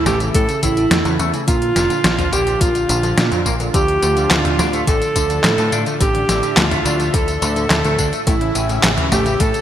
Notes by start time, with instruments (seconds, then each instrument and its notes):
Already playing: analog synth pad C#3 E3 A3 E4 A4
0.06 picked electric bass A1, synth arpeggio sound A3, clean electric guitar A3, alto saxophone G4, digital synth lead G4, snare, closed hi-hat, tambourine
0.20 synth arpeggio sound C#3, clean electric guitar E3, closed hi-hat, tambourine
0.34 clean electric guitar A2, picked electric bass A2, synth arpeggio sound C#4, alto saxophone A4, digital synth lead A4, kick, closed hi-hat, tambourine
0.49 synth arpeggio sound C#3, closed hi-hat, tambourine
0.63 picked electric bass A1, clean electric guitar A2, synth arpeggio sound C#3, digital synth lead E4, alto saxophone E4, kick, closed hi-hat, tambourine
0.77 clean electric guitar A2, closed hi-hat, tambourine
0.91 picked electric bass E2, clean electric guitar A2, synth arpeggio sound A3, snare, closed hi-hat, tambourine
1.05 picked electric bass E2, synth arpeggio sound C#3, clean electric guitar E3, closed hi-hat, tambourine
1.19 picked electric bass E2, clean electric guitar A3, synth arpeggio sound C#4, closed hi-hat, tambourine
1.33 synth arpeggio sound C#3, clean electric guitar E3, closed hi-hat, tambourine
1.48 picked electric bass A#2, analog synth pad A#2 D3 F3 D4 F4, clean electric guitar A#2, synth arpeggio sound D3, alto saxophone F4, digital synth lead F4, kick, closed hi-hat, tambourine
1.62 closed hi-hat
1.76 picked electric bass F1, clean electric guitar A#2, synth arpeggio sound A#3, snare, closed hi-hat, tambourine
1.90 clean electric guitar A#2, synth arpeggio sound D3, closed hi-hat, tambourine
2.04 picked electric bass A#1, clean electric guitar A#2, synth arpeggio sound D4, snare, closed hi-hat, tambourine
2.18 synth arpeggio sound D3, clean electric guitar F3, closed hi-hat, mid tom, tambourine
2.32 picked electric bass A#1, synth arpeggio sound D3, clean electric guitar A#3, alto saxophone G4, digital synth lead G4, closed hi-hat, tambourine
2.47 clean electric guitar F3, closed hi-hat, tambourine
2.61 picked electric bass A#1, clean electric guitar A#2, synth arpeggio sound A#3, alto saxophone F4, digital synth lead F4, kick, closed hi-hat, tambourine
2.75 synth arpeggio sound D3, closed hi-hat, tambourine
2.89 picked electric bass A#1, clean electric guitar A#2, synth arpeggio sound D4, closed hi-hat, tambourine
3.03 synth arpeggio sound D3, clean electric guitar F3, closed hi-hat, tambourine
3.17 clean electric guitar A#2, picked electric bass A#2, synth arpeggio sound D3, snare, closed hi-hat, tambourine
3.32 picked electric bass F2, clean electric guitar A#2, closed hi-hat, tambourine
3.46 picked electric bass A#1, synth arpeggio sound A#3, clean electric guitar A#3, kick, closed hi-hat, tambourine
3.60 clean electric guitar A#2, synth arpeggio sound D3, closed hi-hat, tambourine
3.74 picked electric bass D2, analog synth pad A2, synth arpeggio sound D3, clean electric guitar D3, alto saxophone G4, digital synth lead G4, kick, closed hi-hat, tambourine
3.88 closed hi-hat
4.02 picked electric bass D2, clean electric guitar D3, synth arpeggio sound A3, closed hi-hat, tambourine
4.16 synth arpeggio sound D3, clean electric guitar D3, closed hi-hat, tambourine
4.31 picked electric bass D2, clean electric guitar D3, synth arpeggio sound D4, digital synth lead F4, alto saxophone F4, snare, clap, closed hi-hat, tambourine
4.45 synth arpeggio sound D3, clean electric guitar A3, closed hi-hat, mid tom
4.59 picked electric bass D2, synth arpeggio sound D3, clean electric guitar D4, snare, closed hi-hat, tambourine
4.73 clean electric guitar A3, closed hi-hat, tambourine
4.87 picked electric bass A1, clean electric guitar D3, synth arpeggio sound A3, digital synth lead A4, alto saxophone A4, kick, closed hi-hat, tambourine
5.01 synth arpeggio sound D3, closed hi-hat, tambourine
5.16 picked electric bass D2, clean electric guitar D3, synth arpeggio sound D4, kick, closed hi-hat, tambourine
5.30 synth arpeggio sound D3, clean electric guitar D3, closed hi-hat, tambourine
5.44 picked electric bass A2, synth arpeggio sound D3, clean electric guitar D3, digital synth lead A4, alto saxophone A4, snare, clap, closed hi-hat, tambourine
5.58 picked electric bass A2, clean electric guitar A3, closed hi-hat, tambourine
5.72 picked electric bass A2, synth arpeggio sound A3, clean electric guitar D4, closed hi-hat, tambourine
5.86 synth arpeggio sound D3, clean electric guitar A3, closed hi-hat, tambourine
6.00 picked electric bass A1, clean electric guitar D3, synth arpeggio sound D4, alto saxophone G4, digital synth lead G4, analog synth pad E5, kick, closed hi-hat, tambourine
6.15 synth arpeggio sound D3, closed hi-hat
6.29 picked electric bass A1, synth arpeggio sound D3, clean electric guitar D3, snare, closed hi-hat, tambourine
6.43 clean electric guitar D3, closed hi-hat, tambourine
6.57 picked electric bass D2, clean electric guitar D3, synth arpeggio sound A3, alto saxophone F4, digital synth lead F4, snare, clap, closed hi-hat, tambourine
6.71 synth arpeggio sound D3, clean electric guitar A3, closed hi-hat, mid tom, tambourine
6.85 picked electric bass D2, synth arpeggio sound D4, clean electric guitar D4, closed hi-hat, tambourine
6.99 synth arpeggio sound D3, clean electric guitar A3, closed hi-hat, tambourine
7.14 picked electric bass D2, synth arpeggio sound D3, clean electric guitar D3, alto saxophone A4, digital synth lead A4, kick, closed hi-hat, tambourine
7.28 closed hi-hat, tambourine
7.42 picked electric bass D2, clean electric guitar D3, synth arpeggio sound A3, closed hi-hat, tambourine
7.56 synth arpeggio sound D3, clean electric guitar D3, closed hi-hat, tambourine
7.70 picked electric bass D2, clean electric guitar D3, synth arpeggio sound D4, alto saxophone A4, digital synth lead A4, snare, clap, closed hi-hat, tambourine
7.84 picked electric bass D2, synth arpeggio sound D3, clean electric guitar A3, closed hi-hat, tambourine
7.99 picked electric bass D2, synth arpeggio sound D3, clean electric guitar D4, kick, closed hi-hat, tambourine
8.13 clean electric guitar A3, closed hi-hat, tambourine
8.27 picked electric bass A1, clean electric guitar A2, analog synth pad C#3 E3 C#4, synth arpeggio sound A3, alto saxophone E4, digital synth lead E4, kick, closed hi-hat, tambourine
8.41 synth arpeggio sound C#3, closed hi-hat
8.55 picked electric bass A1, clean electric guitar A2, synth arpeggio sound C#4, closed hi-hat, tambourine
8.69 clean electric guitar A2, synth arpeggio sound C#3, closed hi-hat, tambourine
8.84 picked electric bass A1, clean electric guitar A2, synth arpeggio sound C#3, snare, clap, closed hi-hat, tambourine
8.98 clean electric guitar E3, closed hi-hat, mid tom
9.12 picked electric bass A1, synth arpeggio sound A3, clean electric guitar A3, alto saxophone G4, digital synth lead G4, snare, closed hi-hat, tambourine
9.26 synth arpeggio sound C#3, clean electric guitar E3, closed hi-hat, tambourine
9.40 picked electric bass A2, clean electric guitar A2, synth arpeggio sound C#4, alto saxophone A4, digital synth lead A4, kick, closed hi-hat, tambourine
9.54 synth arpeggio sound C#3, closed hi-hat, tambourine